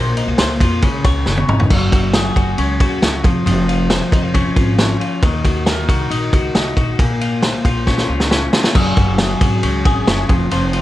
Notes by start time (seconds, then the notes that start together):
Already playing: A#1 A#2 C5
0.17 D#4, ride
0.27 C2 F4
0.38 C#2 C5, snare, ride
0.60 F2 F4, kick, ride
0.82 C#2 C#3, kick, ride
1.04 C#2 C#5, kick, ride
1.26 F#1 C#4, snare
1.37 high tom
1.48 G#1 D#4, mid tom
1.60 floor tom
1.70 F#1 F#3, kick, crash
1.92 F#4, kick, ride
2.13 G#4, snare, ride
2.36 F#1 F#4, kick, ride
2.58 C#2 C#4, ride
2.80 D#2 F#4, kick, ride
3.02 C#2 C#4, snare, ride
3.24 F1 F3, kick, ride
3.46 F1 F3, ride
3.68 F4, ride
3.90 C5, snare, ride
4.12 F1 D#4, kick, ride
4.23 F4
4.34 C#4, kick, ride
4.56 G#1 F4, kick, ride
4.78 C#4, snare, ride
5.00 F4, ride
5.22 D#2 D#3, kick, ride
5.45 F#4, kick, ride
5.66 A#4, snare, ride
5.89 C2 F#4, kick, ride
6.10 A#1 D#4, ride
6.33 C#2 F#4, kick, ride
6.55 C2 D#4, snare, ride
6.77 A#1 F#4, kick, ride
6.99 A#1 A#2, kick, ride
7.21 F4, ride
7.43 C5, snare, ride
7.65 A#1 F4, kick, ride
7.87 C#4, kick, snare
7.98 snare
8.08 C#2 F4
8.20 snare
8.31 C#4, snare
8.53 F4, snare
8.64 snare
8.75 F#1 F#3 G#4, kick, crash
8.97 F#1 F#4, kick, ride
9.18 G#4, snare, ride
9.41 G#1 F#4, kick, ride
9.63 C#2 C#4, ride
9.85 G#1 G#4, kick, ride
10.07 F#1 C#4, snare, ride
10.29 F1 F3, kick, ride
10.51 F1 F3 C5, ride
10.73 F4, ride